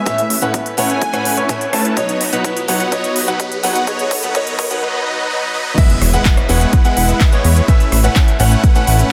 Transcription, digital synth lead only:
0.06 0.14 E5 medium
0.18 0.26 E5 medium
0.90 1.37 G#5 medium
1.97 2.05 C#5 medium
2.09 2.16 C#5 medium
2.80 2.88 F#5 medium
2.92 3.00 C#5 medium
3.04 3.12 C#5 medium
3.75 3.83 F#5 medium
3.87 3.95 C#5 medium
3.99 4.07 C#5 medium
4.35 4.43 C#5 medium
4.47 4.54 C#5 medium

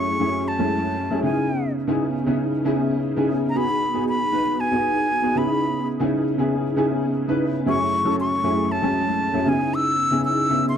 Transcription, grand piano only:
0.00 0.19 F#2 medium
0.00 0.20 A3 medium
0.00 0.20 C#4 medium
0.00 0.21 E4 medium
0.00 0.21 G#4 medium
0.19 0.45 F#2 medium
0.19 0.45 A3 medium
0.19 0.45 C#4 medium
0.19 0.45 E4 medium
0.19 0.45 G#4 medium
0.59 0.92 F#2 medium
0.59 0.92 G#3 medium
0.59 0.92 A3 medium
0.59 0.92 C#4 medium
0.59 0.92 E4 medium
1.10 1.23 F#2 medium
1.10 1.24 A3 medium
1.10 1.24 C#4 medium
1.10 1.22 E4 medium
1.10 1.22 G#4 medium
1.23 1.75 C#3 medium
1.23 1.75 B3 medium
1.23 1.75 D#4 medium
1.23 1.75 E4 medium
1.23 1.75 G#4 medium
1.87 2.12 C#3 medium
1.87 2.12 B3 medium
1.87 2.12 D#4 medium
1.87 2.13 E4 medium
1.87 2.13 G#4 medium
2.26 2.51 C#3 medium
2.26 2.51 B3 medium
2.26 2.51 D#4 medium
2.26 2.51 E4 medium
2.26 2.52 G#4 medium
2.65 2.98 C#3 medium
2.65 2.98 B3 medium
2.65 2.98 D#4 medium
2.65 2.98 E4 medium
2.65 2.98 G#4 medium
3.17 3.41 C#3 medium
3.17 3.41 B3 medium
3.17 3.42 D#4 medium
3.17 3.42 E4 medium
3.17 3.42 G#4 medium
3.55 3.80 B3 medium
3.55 3.80 D#4 medium
3.55 3.80 F#4 medium
3.55 3.80 G#4 medium
3.94 4.18 B3 medium
3.94 4.19 D#4 medium
3.94 4.19 F#4 medium
3.94 4.19 G#4 medium
4.32 4.57 B3 medium
4.32 4.57 D#4 medium
4.32 4.57 F#4 medium
4.32 4.57 B4 medium
4.71 5.04 B3 medium
4.71 5.04 D#4 medium
4.71 5.04 F#4 medium
4.71 5.04 G#4 medium
5.22 5.34 B3 medium
5.22 5.34 D#4 medium
5.22 5.36 F#4 medium
5.22 5.35 G#4 medium
5.35 5.87 C#3 medium
5.35 5.87 B3 medium
5.35 5.87 D#4 medium
5.35 5.87 E4 medium
5.35 5.87 G#4 medium
6.00 6.24 C#3 medium
6.00 6.24 B3 medium
6.00 6.24 D#4 medium
6.00 6.24 E4 medium
6.00 6.25 G#4 medium
6.38 6.63 C#3 medium
6.38 6.63 B3 medium
6.38 6.63 D#4 medium
6.38 6.63 E4 medium
6.38 6.63 G#4 medium
6.76 7.09 C#3 medium
6.76 7.09 B3 medium
6.76 7.10 D#4 medium
6.76 7.10 E4 medium
6.76 7.10 G#4 medium
7.28 7.53 C#3 medium
7.28 7.53 B3 medium
7.28 7.53 D#4 medium
7.28 7.53 E4 medium
7.28 7.53 B4 medium
7.66 7.91 F#2 medium
7.66 7.91 A3 medium
7.66 7.91 C#4 medium
7.66 7.91 E4 medium
7.66 7.92 G#4 medium
8.04 8.29 F#2 medium
8.04 8.30 A3 medium
8.04 8.30 C#4 medium
8.04 8.30 E4 medium
8.04 8.30 A4 medium
8.43 8.68 F#2 medium
8.43 8.68 A3 medium
8.43 8.69 C#4 medium
8.43 8.69 E4 medium
8.43 8.69 G#4 medium
8.82 9.15 F#2 medium
8.82 9.15 G#3 medium
8.82 9.15 A3 medium
8.82 9.15 C#4 medium
8.82 9.15 E4 medium
9.33 9.47 F#2 medium
9.33 9.47 A3 medium
9.33 9.47 C#4 medium
9.33 9.45 E4 medium
9.33 9.46 G#4 medium
9.46 9.98 C#3 medium
9.46 9.98 B3 medium
9.46 9.98 D#4 medium
9.46 9.98 E4 medium
9.46 9.99 G#4 medium
10.10 10.35 C#3 medium
10.10 10.35 B3 medium
10.10 10.36 D#4 medium
10.10 10.36 E4 medium
10.10 10.36 G#4 medium
10.49 10.74 C#3 medium
10.49 10.74 B3 medium
10.49 10.74 D#4 medium
10.49 10.74 E4 medium
10.49 10.75 G#4 medium

